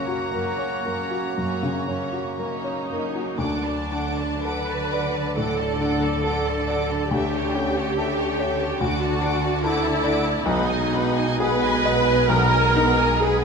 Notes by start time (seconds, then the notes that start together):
Already playing: F#2 C#3 F#3 A#3 C#4 C#5 F#5 A#5 C#6
0.08 F#4
0.32 F#2 F#3 A#3 C#4 A#4 C#5
0.58 C#5
0.85 F#2 F#3 A#3 C#4 A#4 C#5
1.11 F#4
1.37 F#2 F#3 A#3 C#4 C#5
1.63 C#3
1.88 F#2 F#3 A#3 C#4 C#5
2.13 F#4
2.39 F#2 F#3 A#3 C#4 D#4 A#4 C#5
2.64 C#5
2.89 F#2 F#3 A#3 C#4 A#4 C#5
3.15 F#4
3.38 D2 D3 F#3 D4 A4 F#5 D6
3.64 D5 A5
3.91 D4 A4 F#5 D6
4.18 D5 A5
4.44 A4 B4 F#5 D6
4.69 D5 A5
4.91 A4 D5 F#5 D6
5.14 D5 A5
5.36 A2 A4 F#5 D6
5.58 D5 A5
5.81 D4 A4 F#5 D6
6.03 D5 A5
6.24 A4 F#5 D6
6.46 D5 A5
6.68 A4 D5 F#5 D6
6.90 D5 A5
7.10 D2 A3 C#4 G4 A4 E5 G5
7.33 C#5 G5 A5
7.55 C#4 A4 E5 G5
7.76 C#5 G5 A5
7.97 A4 E5 G5
8.17 C#5 G5 A5
8.39 A4 C#5 E5 G5
8.60 C#5 G5 A5
8.80 D2 D3 D4 F#4 A4 F#5 D6
9.01 D5 A5
9.21 D4 A4 F#5 D6
9.43 D5 A5
9.63 E4 A4 F#5 D6
9.83 D5 A5
10.04 A4 D5 F#5 D6
10.25 D5 A5
10.45 B1 B2 G#3 D#4 F#4 B4 F#5 B5
10.68 D#5 G#5
10.92 D#4 B4 F#5 B5
11.16 D#5 G#5
11.40 G#4 B4 F#5 B5
11.63 D#5 G#5
11.84 B4 D#5 F#5 B5
12.06 D#5 G#5
12.29 B1 A#4 B4 F#5 B5
12.51 D#5 G#5
12.74 D#4 B4 F#5 B5
12.97 D#5 G#5
13.21 G#4 B4 F#5 B5